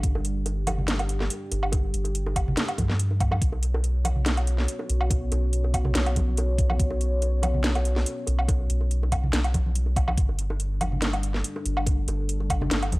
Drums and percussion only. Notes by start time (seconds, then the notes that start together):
0.03 kick, closed hi-hat
0.15 high bongo
0.25 closed hi-hat
0.46 closed hi-hat, high bongo
0.67 closed hi-hat, high bongo, high conga, low woodblock
0.78 low conga
0.88 snare, closed hi-hat
0.99 closed hi-hat, high bongo, low woodblock
1.09 closed hi-hat
1.20 snare, high bongo
1.30 closed hi-hat
1.51 closed hi-hat, high bongo
1.63 low woodblock
1.72 kick, closed hi-hat, high bongo
1.94 closed hi-hat
2.04 closed hi-hat, high bongo
2.15 closed hi-hat
2.26 high bongo
2.36 kick, closed hi-hat, low woodblock
2.48 low conga
2.57 snare, closed hi-hat, high bongo
2.68 closed hi-hat, low woodblock
2.78 kick, closed hi-hat, high bongo, high conga
2.89 snare, high conga
2.99 closed hi-hat
3.11 high bongo
3.20 kick, closed hi-hat, low woodblock
3.31 high bongo, high conga, low woodblock
3.42 kick, closed hi-hat
3.52 high bongo
3.63 closed hi-hat
3.74 high bongo
3.84 closed hi-hat
4.05 closed hi-hat, high bongo, high conga, low woodblock
4.16 low conga
4.26 snare, closed hi-hat, high bongo
4.37 closed hi-hat, low woodblock
4.47 closed hi-hat
4.58 snare, high bongo
4.68 closed hi-hat
4.79 high bongo
4.89 closed hi-hat
5.01 low woodblock
5.10 kick, closed hi-hat, high bongo
5.32 closed hi-hat, high bongo
5.53 closed hi-hat
5.64 high bongo
5.74 kick, closed hi-hat, low woodblock
5.85 high bongo, low conga
5.95 snare, closed hi-hat
6.06 closed hi-hat, low woodblock
6.16 kick, closed hi-hat, high bongo, high conga
6.37 closed hi-hat, high bongo
6.58 kick, closed hi-hat
6.70 high bongo, high conga, low woodblock
6.80 kick, closed hi-hat
6.90 high bongo
7.01 closed hi-hat
7.22 closed hi-hat, high bongo
7.42 closed hi-hat, high bongo, high conga, low woodblock
7.54 low conga
7.64 snare, closed hi-hat
7.75 closed hi-hat, high bongo, low woodblock
7.85 closed hi-hat
7.96 snare, high bongo
8.06 closed hi-hat
8.27 closed hi-hat, high bongo
8.39 low woodblock
8.48 kick, closed hi-hat, high bongo
8.70 closed hi-hat
8.81 high bongo
8.91 closed hi-hat
9.03 high bongo
9.12 kick, closed hi-hat, low woodblock
9.23 low conga
9.33 snare, closed hi-hat, high bongo
9.44 closed hi-hat, low woodblock
9.54 kick, closed hi-hat, high bongo, high conga
9.66 high conga
9.75 closed hi-hat
9.86 high bongo
9.96 kick, closed hi-hat, low woodblock
10.08 high bongo, high conga, low woodblock
10.17 kick, closed hi-hat
10.29 high bongo
10.39 closed hi-hat
10.50 high bongo
10.60 closed hi-hat
10.81 closed hi-hat, high bongo, high conga, low woodblock
10.92 low conga
11.02 snare, closed hi-hat, high bongo
11.13 closed hi-hat, low woodblock
11.23 closed hi-hat
11.34 snare, high bongo
11.44 closed hi-hat
11.56 high bongo
11.65 closed hi-hat
11.77 low woodblock
11.86 kick, closed hi-hat, high bongo
12.08 closed hi-hat, high bongo
12.29 closed hi-hat
12.40 high bongo
12.50 kick, closed hi-hat, low woodblock
12.61 high bongo, low conga
12.71 snare, closed hi-hat
12.82 closed hi-hat, low woodblock
12.92 kick, closed hi-hat, high bongo, high conga